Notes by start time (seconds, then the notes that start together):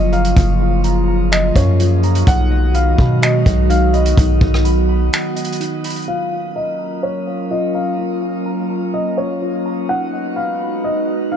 Already playing: F#1 C#3 F3 F#3 A#3 F4 D#5 F5 A#5
0.13 F5 A#5, closed hi-hat
0.25 closed hi-hat
0.37 F#1 F4, kick, closed hi-hat
0.60 F5
0.84 A#5, closed hi-hat
1.08 A#5
1.32 D#5, finger snap, closed hi-hat
1.55 F#2 C#5 F5, kick, closed hi-hat
1.80 F4, closed hi-hat
2.03 A#5, closed hi-hat
2.15 closed hi-hat
2.27 B1 D#3 F#3 G#3 B3 D#4 F#4 F#5, kick, closed hi-hat
2.51 D#5
2.74 F5 B5, closed hi-hat
2.98 B2 B5, kick
3.22 D#5, finger snap, closed hi-hat
3.46 B1 D#5, kick, closed hi-hat
3.70 D#4 F5, closed hi-hat
3.93 D#5 B5, closed hi-hat
4.06 closed hi-hat
4.17 B1 D#4, kick, closed hi-hat
4.41 B1 D#5, kick
4.54 cross-stick
4.65 B5, closed hi-hat
4.89 B5
5.13 finger snap, closed hi-hat
5.36 D#5, closed hi-hat
5.45 closed hi-hat
5.53 closed hi-hat
5.60 D#4, closed hi-hat
5.84 B5, closed hi-hat
5.90 closed hi-hat
5.96 closed hi-hat
6.02 closed hi-hat
6.08 F#3 A#3 C#4 F4 A#4 F5
6.32 F5
6.56 D#5 A#5
6.79 A#5
7.03 C#5
7.27 F5
7.51 F4 D#5
7.75 F5 A#5
7.99 F4
8.22 F5
8.46 A#5
8.70 A#5
8.94 D#5
9.17 C#5 F5
9.42 F4
9.66 A#5
9.89 G#3 B3 D#4 F#4 B4 F#5
10.13 D#5
10.36 F5 B5
10.60 B5
10.84 D#5
11.08 D#5
11.31 D#4 F5